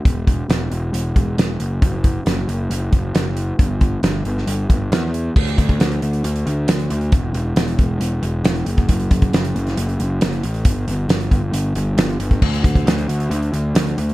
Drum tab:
CC |----------------|----------------|----------------|x---------------|
HH |x-x-x-x-x-x-x-x-|x-x-x-x-x-x-x-x-|x-x-x-x-x-x-x-x-|-xxxxxxxxxx-xxxx|
SD |----o-------o---|----o-------o---|----o--o----o---|----o-------o---|
BD |o-o-------o-----|o-o-------o-----|o-o-------o-----|o-oo------------|

CC |----------------|----------------|----------------|x---------------|
HH |x-x-xxx-x-x-xxxx|xxxxxxxxxxx-xxxx|x-x-xxx-x-x-xxxx|-xxxxxxxxxx-xxxx|
SD |----o-------o---|----o--o----o---|----o-------o---|----o-------o---|
BD |o-----o--------o|o-oo------------|o-----o--------o|o-oo------------|